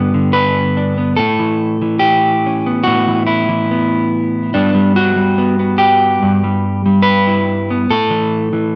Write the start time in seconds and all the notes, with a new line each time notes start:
Already playing: G2 D3 B3 G4
0.14 D3
0.33 B4
0.77 D4
0.98 B3
1.16 A2 A4
1.39 E3
1.82 E3
1.99 G4
2.46 C#4
2.67 B3
2.83 A2 F#4
3.08 E3
3.27 E4
3.49 E3
3.71 B3
4.54 G2 G3 B3 D4
4.75 G3
4.96 F#4
5.16 G3
5.38 B3
5.59 B3
5.78 G4
6.23 G2
6.44 G3
6.86 G3
7.02 B4
7.27 E4
7.70 B3
7.90 A2 A4
8.10 E3
8.53 E3